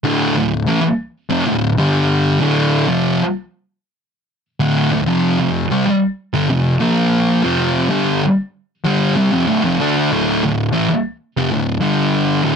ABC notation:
X:1
M:4/4
L:1/16
Q:1/4=96
K:Dm
V:1 name="Distorted electric guitar" clef=bass
[D,,A,,D,]2 [D,,A,,]2 [A,,E,] z3 [F,,C,] [D,,A,,]2 [G,,D,G,]4 [D,,A,,D,]- | [D,,A,,D,]2 [F,,C,F,]2 z8 z [D,,A,,D,]2 [D,,A,,] | [F,,C,F,]2 [F,,C,]2 [C,G,] z3 [G,,D,] [F,,C,]2 [B,,F,B,]4 [F,,C,F,]- | [F,,C,F,]2 [G,,D,G,]2 z4 [G,,D,G,]2 [C,G,] [F,,C,] [D,,A,,] [F,,C,] [D,A,D]2 |
[D,,A,,D,]2 [D,,A,,]2 [A,,E,] z3 [F,,C,] [D,,A,,]2 [G,,D,G,]4 [D,,A,,D,] |]